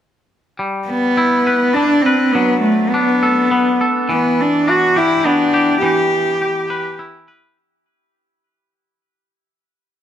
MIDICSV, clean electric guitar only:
0, 0, Header, 1, 2, 480
1, 0, Start_track
1, 0, Tempo, 581959
1, 486, Time_signature, 3, 2, 24, 8
1, 8266, End_track
2, 0, Start_track
2, 0, Title_t, "Clean electric guitar"
2, 0, Program_c, 0, 27
2, 488, Note_on_c, 0, 55, 39
2, 969, Note_on_c, 0, 64, 39
2, 1212, Note_on_c, 0, 71, 41
2, 1455, Note_on_c, 0, 62, 40
2, 1696, Note_off_c, 0, 55, 0
2, 1697, Note_off_c, 0, 71, 0
2, 1700, Note_on_c, 0, 71, 40
2, 1935, Note_off_c, 0, 64, 0
2, 1938, Note_on_c, 0, 54, 42
2, 2424, Note_off_c, 0, 62, 0
2, 2424, Note_on_c, 0, 62, 37
2, 2659, Note_off_c, 0, 71, 0
2, 2662, Note_on_c, 0, 69, 42
2, 2897, Note_on_c, 0, 59, 39
2, 3132, Note_off_c, 0, 69, 0
2, 3138, Note_off_c, 0, 54, 0
2, 3142, Note_on_c, 0, 69, 42
2, 3373, Note_on_c, 0, 52, 46
2, 3379, Note_off_c, 0, 69, 0
2, 3380, Note_off_c, 0, 62, 0
2, 3858, Note_on_c, 0, 62, 39
2, 4093, Note_on_c, 0, 67, 45
2, 4330, Note_off_c, 0, 59, 0
2, 4333, Note_on_c, 0, 59, 46
2, 4565, Note_off_c, 0, 67, 0
2, 4568, Note_on_c, 0, 67, 47
2, 4801, Note_off_c, 0, 52, 0
2, 4805, Note_on_c, 0, 52, 45
2, 4814, Note_off_c, 0, 62, 0
2, 5290, Note_off_c, 0, 67, 0
2, 5293, Note_on_c, 0, 67, 44
2, 5527, Note_on_c, 0, 71, 49
2, 5766, Note_on_c, 0, 64, 47
2, 5995, Note_off_c, 0, 71, 0
2, 6004, Note_off_c, 0, 52, 0
2, 6005, Note_on_c, 0, 71, 45
2, 6245, Note_off_c, 0, 71, 0
2, 6246, Note_off_c, 0, 64, 0
2, 6248, Note_off_c, 0, 67, 0
2, 6661, Note_off_c, 0, 59, 0
2, 8266, End_track
0, 0, End_of_file